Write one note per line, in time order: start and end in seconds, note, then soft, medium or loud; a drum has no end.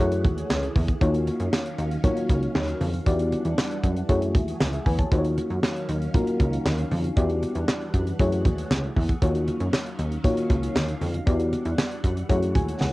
0.00 0.26 F#2 loud
0.00 0.99 E3 medium
0.00 0.65 A3 medium
0.00 1.00 A3 medium
0.00 0.66 E4 medium
0.00 0.66 F#4 medium
0.00 0.66 G#4 medium
0.00 1.01 G#4 medium
0.00 0.66 C#5 loud
0.00 0.99 F#5 medium
0.12 closed hi-hat medium
0.25 0.43 D#2 loud
0.25 kick loud
0.25 closed hi-hat medium
0.25 muted conga medium
0.25 low conga medium
0.38 closed hi-hat medium
0.50 0.69 C#2 loud
0.50 snare loud
0.50 clap loud
0.50 high conga medium
0.63 closed hi-hat medium
0.76 0.95 E2 medium
0.76 kick loud
0.76 open hi-hat medium
0.76 high conga medium
0.88 kick loud
0.88 closed hi-hat medium
0.88 high conga soft
1.01 1.30 D#2 loud
1.01 3.05 D#3 medium
1.01 3.05 F#3 medium
1.01 1.68 A#3 medium
1.01 3.05 C#4 medium
1.01 1.68 D#4 medium
1.01 1.68 F4 medium
1.01 1.68 F#4 medium
1.01 1.68 C#5 medium
1.01 3.05 F5 loud
1.01 kick loud
1.01 closed hi-hat medium
1.01 muted conga soft
1.14 closed hi-hat medium
1.27 closed hi-hat medium
1.27 muted conga medium
1.40 1.49 F#2 medium
1.40 closed hi-hat medium
1.53 snare loud
1.53 clap medium
1.53 high conga medium
1.66 closed hi-hat medium
1.78 1.97 D#2 loud
1.78 closed hi-hat medium
1.91 closed hi-hat soft
2.04 2.71 A#3 medium
2.04 2.71 D#4 medium
2.04 2.71 F4 medium
2.04 2.71 F#4 medium
2.04 2.71 C#5 loud
2.04 kick loud
2.04 closed hi-hat medium
2.04 muted conga medium
2.04 low conga medium
2.17 closed hi-hat medium
2.30 2.48 C#2 loud
2.30 kick loud
2.30 closed hi-hat medium
2.30 muted conga medium
2.43 closed hi-hat medium
2.55 2.74 D#2 loud
2.55 snare loud
2.55 clap loud
2.55 high conga medium
2.68 closed hi-hat medium
2.81 3.00 F2 loud
2.81 open hi-hat medium
2.81 high conga medium
2.94 closed hi-hat medium
2.94 high conga medium
3.06 3.35 E2 loud
3.06 5.10 E3 medium
3.06 4.08 G3 medium
3.06 3.73 B3 medium
3.06 4.08 D4 medium
3.06 3.73 E4 medium
3.06 3.73 F#4 medium
3.06 3.73 G4 medium
3.06 3.74 D5 loud
3.06 4.08 F#5 medium
3.06 kick loud
3.06 closed hi-hat medium
3.19 closed hi-hat medium
3.32 closed hi-hat medium
3.32 muted conga medium
3.45 3.54 E2 medium
3.45 closed hi-hat medium
3.58 snare loud
3.58 clap loud
3.58 high conga medium
3.71 closed hi-hat medium
3.83 4.02 F#2 loud
3.83 kick medium
3.83 closed hi-hat medium
3.96 closed hi-hat soft
4.09 4.36 F#2 loud
4.09 4.76 A3 medium
4.09 5.11 A3 medium
4.09 4.76 E4 medium
4.09 5.11 F#4 medium
4.09 4.76 F#4 medium
4.09 5.10 G#4 medium
4.09 4.35 G#4 medium
4.09 4.35 C#5 loud
4.09 kick loud
4.09 closed hi-hat medium
4.09 muted conga medium
4.22 closed hi-hat medium
4.35 4.54 D#2 medium
4.35 kick loud
4.35 closed hi-hat medium
4.35 muted conga medium
4.35 low conga medium
4.48 closed hi-hat medium
4.60 4.79 C#2 medium
4.60 snare loud
4.60 clap loud
4.60 high conga medium
4.73 4.86 G#4 medium
4.73 4.85 E5 medium
4.73 closed hi-hat medium
4.86 5.05 E2 loud
4.86 4.98 B4 medium
4.86 4.98 G#5 medium
4.86 kick loud
4.86 open hi-hat medium
4.86 high conga medium
4.99 5.17 C#5 medium
4.99 5.23 A5 medium
4.99 kick loud
4.99 closed hi-hat medium
4.99 high conga medium
5.11 5.40 D#2 loud
5.11 7.14 D#3 medium
5.11 7.14 F#3 medium
5.11 5.78 A#3 medium
5.11 7.14 C#4 medium
5.11 5.78 D#4 medium
5.11 5.79 F4 medium
5.11 5.79 F#4 medium
5.11 5.18 C5 medium
5.11 7.14 F5 loud
5.11 kick loud
5.11 closed hi-hat medium
5.11 muted conga soft
5.18 5.82 C#5 medium
5.24 closed hi-hat medium
5.38 closed hi-hat medium
5.38 muted conga medium
5.50 5.60 F#2 medium
5.50 closed hi-hat medium
5.63 snare loud
5.63 clap loud
5.63 high conga medium
5.76 closed hi-hat medium
5.89 6.08 D#2 medium
5.89 closed hi-hat medium
6.02 closed hi-hat soft
6.14 6.81 A#3 medium
6.14 6.81 D#4 medium
6.14 6.81 F4 medium
6.14 6.81 F#4 medium
6.14 6.81 A#4 loud
6.14 kick loud
6.14 closed hi-hat loud
6.14 muted conga medium
6.14 low conga medium
6.27 closed hi-hat medium
6.40 6.59 C#2 loud
6.40 kick loud
6.40 closed hi-hat medium
6.40 muted conga medium
6.53 closed hi-hat medium
6.66 6.84 D#2 loud
6.66 snare loud
6.66 clap loud
6.66 high conga medium
6.78 closed hi-hat medium
6.91 7.10 F2 loud
6.91 open hi-hat medium
6.91 high conga medium
7.04 closed hi-hat medium
7.04 high conga soft
7.16 7.45 E2 loud
7.16 9.20 E3 medium
7.16 8.18 G3 medium
7.16 7.83 B3 medium
7.16 8.18 D4 medium
7.16 7.84 E4 medium
7.16 7.84 F#4 medium
7.16 7.84 G4 medium
7.16 7.84 D5 medium
7.16 9.20 F#5 medium
7.16 kick loud
7.16 closed hi-hat loud
7.16 muted conga soft
7.30 closed hi-hat medium
7.43 closed hi-hat medium
7.43 muted conga medium
7.55 7.65 E2 medium
7.55 closed hi-hat medium
7.68 snare loud
7.68 clap loud
7.68 high conga medium
7.81 closed hi-hat medium
7.94 8.13 F#2 medium
7.94 kick medium
7.94 closed hi-hat medium
8.07 closed hi-hat medium
8.19 8.47 F#2 loud
8.19 8.86 A3 medium
8.19 9.21 A3 medium
8.19 8.86 E4 medium
8.19 8.86 F#4 medium
8.19 9.21 G#4 medium
8.19 8.86 G#4 medium
8.19 8.87 C#5 loud
8.19 kick loud
8.19 closed hi-hat medium
8.19 muted conga medium
8.32 closed hi-hat medium
8.45 8.64 D#2 loud
8.45 kick loud
8.45 closed hi-hat medium
8.45 muted conga medium
8.45 low conga medium
8.58 closed hi-hat medium
8.71 8.89 C#2 loud
8.71 snare loud
8.71 clap loud
8.71 high conga medium
8.83 closed hi-hat medium
8.96 9.15 E2 loud
8.96 kick loud
8.96 open hi-hat medium
8.96 high conga medium
9.09 kick loud
9.09 closed hi-hat medium
9.09 high conga soft
9.22 9.50 D#2 loud
9.22 11.25 D#3 medium
9.22 11.25 F#3 medium
9.22 9.89 A#3 medium
9.22 11.25 C#4 medium
9.22 9.89 D#4 medium
9.22 9.89 F4 medium
9.22 9.89 F#4 medium
9.22 9.89 C#5 medium
9.22 11.25 F5 medium
9.22 kick loud
9.22 closed hi-hat loud
9.22 muted conga soft
9.35 closed hi-hat medium
9.48 closed hi-hat medium
9.48 muted conga medium
9.60 9.70 F#2 medium
9.60 closed hi-hat medium
9.73 snare loud
9.73 clap loud
9.73 high conga medium
9.86 closed hi-hat medium
9.99 10.18 D#2 medium
9.99 closed hi-hat medium
10.12 closed hi-hat soft
10.24 10.91 A#3 medium
10.24 10.91 D#4 medium
10.24 10.91 F4 medium
10.24 10.91 F#4 medium
10.24 10.91 C#5 loud
10.24 kick loud
10.24 closed hi-hat medium
10.24 muted conga medium
10.24 low conga medium
10.37 closed hi-hat medium
10.50 10.69 C#2 loud
10.50 kick loud
10.50 closed hi-hat medium
10.50 muted conga medium
10.63 closed hi-hat medium
10.75 10.95 D#2 loud
10.75 snare loud
10.75 clap loud
10.75 high conga medium
10.89 closed hi-hat medium
11.01 11.20 F2 loud
11.01 open hi-hat medium
11.01 high conga medium
11.14 closed hi-hat medium
11.14 high conga medium
11.26 11.55 E2 loud
11.26 12.93 E3 medium
11.26 12.28 G3 medium
11.26 11.94 B3 medium
11.26 12.28 D4 medium
11.26 11.94 E4 medium
11.26 11.94 F#4 medium
11.26 11.94 G4 medium
11.26 11.94 D5 medium
11.26 12.93 F#5 medium
11.26 kick loud
11.26 closed hi-hat medium
11.40 closed hi-hat medium
11.53 closed hi-hat medium
11.53 muted conga medium
11.65 11.75 E2 loud
11.65 closed hi-hat medium
11.78 snare loud
11.78 clap medium
11.78 high conga medium
11.91 closed hi-hat medium
12.04 12.23 F#2 medium
12.04 kick medium
12.04 closed hi-hat medium
12.17 closed hi-hat soft
12.29 12.57 F#2 loud
12.29 12.93 A3 medium
12.29 12.93 E4 medium
12.29 12.93 F#4 medium
12.29 12.93 G#4 medium
12.29 12.93 C#5 loud
12.29 kick loud
12.29 closed hi-hat medium
12.29 muted conga medium
12.43 closed hi-hat medium
12.55 12.74 D#2 medium
12.55 12.79 G#5 medium
12.55 kick loud
12.55 closed hi-hat medium
12.55 muted conga medium
12.55 low conga medium
12.69 closed hi-hat medium
12.80 12.93 C#2 loud
12.80 12.93 F#5 medium
12.80 snare medium
12.80 high conga medium